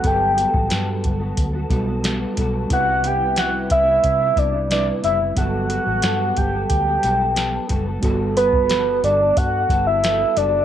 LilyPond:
<<
  \new Staff \with { instrumentName = "Soft synth lead" } { \time 4/4 \key g \major \tempo 4 = 90 g''4 r2. | fis''8 g''8 fis''8 e''4 d''8 d''8 e''8 | fis''4. g''8 g''4. r8 | r8 b'4 d''8 fis''8. e''8. d''8 | }
  \new Staff \with { instrumentName = "Tine electric piano" } { \time 4/4 \key g \major <fis g b a'>2~ <fis g b a'>8 <g b fis' a'>4. | <g c' e' b'>2. <g c' e' b'>4 | <fis g b a'>1 | <g b fis' a'>1 | }
  \new Staff \with { instrumentName = "Clean electric guitar" } { \time 4/4 \key g \major <g b a'>8 <g b fis' a'>16 <b fis' a'>16 <g b fis' a'>8. <b fis' a'>8 <b fis' a'>16 <g b fis' a'>16 <b fis' a'>16 <g b fis' a'>8 <g b fis' a'>8 | <c g b e'>8 <c g b e'>16 <g b e'>16 <c g b e'>8. <g b e'>8 <g b e'>16 <c g b e'>16 <g b e'>16 <c g b e'>8 <c g b e'>16 <g b e'>16 | <g b fis' a'>8 <g b fis' a'>16 <b fis' a'>16 <g b fis' a'>8. <b fis' a'>8 <b fis' a'>16 <g b fis' a'>16 <b fis' a'>16 <g b a'>8 <g b fis' a'>16 <b fis' a'>16 | <g b fis' a'>8 <g b fis' a'>8 <g b fis' a'>8 <g b fis' a'>16 <b fis' a'>8. <g b fis' a'>8 <g b fis' a'>16 <b fis' a'>16 <g b fis' a'>16 <b fis' a'>16 | }
  \new Staff \with { instrumentName = "Fingered electric bass" } { \clef bass \time 4/4 \key g \major g,,8. a,,16 g,8 g,,8 d,8 b,,4 b,,8 | c,4. c,8 c8 c,4 fis,,8 | g,,8. a,,16 g,8 g,,8 d,8 b,,4 fis,,8 | g,,4. g,,8 g,8 g,,4 fis,,8 | }
  \new DrumStaff \with { instrumentName = "Drums" } \drummode { \time 4/4 <hh bd>8 hh16 bd16 <hh sn>8 <hh bd>8 <hh bd>8 <hh bd>8 <hh sn>8 <hh bd>8 | <hh bd>8 hh8 <hh sn>8 <hh bd>8 <hh bd>8 <hh bd>8 <hh sn>8 hh8 | <hh bd>8 hh8 <hh sn>8 <hh bd>8 <hh bd>8 hh8 <hh sn>8 <hh bd>8 | <hh bd>8 hh16 bd16 <hh sn>8 hh8 <hh bd>8 <hh bd>8 <hh sn>8 hh8 | }
>>